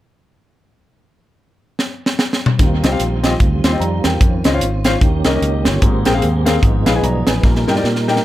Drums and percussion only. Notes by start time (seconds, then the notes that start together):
1.79 snare
2.06 snare
2.19 snare
2.33 snare
2.46 mid tom
2.59 kick, closed hi-hat
2.84 snare, closed hi-hat
3.00 closed hi-hat
3.24 snare, closed hi-hat
3.40 kick, closed hi-hat
3.64 snare, closed hi-hat
3.82 closed hi-hat
4.04 snare, closed hi-hat
4.21 kick, closed hi-hat
4.44 snare, closed hi-hat
4.61 closed hi-hat
4.84 snare, closed hi-hat
5.01 kick, closed hi-hat
5.25 snare, closed hi-hat
5.42 closed hi-hat
5.65 snare, closed hi-hat
5.82 kick, closed hi-hat
6.05 snare, closed hi-hat
6.22 closed hi-hat
6.46 snare, closed hi-hat
6.63 kick, closed hi-hat
6.86 snare, closed hi-hat
7.04 closed hi-hat
7.27 snare, closed hi-hat
7.43 kick, snare
7.56 snare
7.68 snare
7.76 snare
7.84 snare
7.96 snare
8.08 snare
8.16 snare